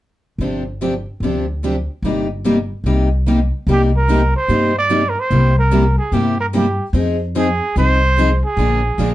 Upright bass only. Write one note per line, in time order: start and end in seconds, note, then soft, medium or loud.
0.38 1.05 G1 medium
1.20 1.86 D2 medium
2.02 2.68 G1 medium
2.84 3.50 C2 medium
3.67 4.32 C2 medium
4.48 5.14 G2 medium
5.30 5.96 C2 medium
6.12 6.78 G2 medium
6.93 7.59 F2 medium
7.76 8.41 C2 medium
8.57 8.90 A#1 medium
8.98 9.14 A#1 medium